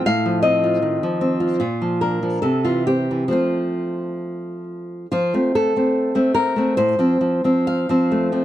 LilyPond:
\new Staff \with { instrumentName = "Nylon-string guitar" } { \time 2/4 \key f \major \tempo 4 = 71 << { f''8 ees''4. | f'8 bes'8 a'16 f'16 g'8 | f'4. r8 | f'8 a'4 bes'8 |
c''4 f''4 | } \\ { a,16 f16 c'16 f'16 ees16 f16 c'16 f'16 | bes,16 f16 d'16 f16 c16 e16 c'16 e16 | <f a c'>2 | f16 <a c'>16 a16 <a c'>8 <a c'>16 c'16 <a c'>16 |
a,16 <f c'>16 f16 <f c'>8 <f c'>16 a16 <f c'>16 | } >> }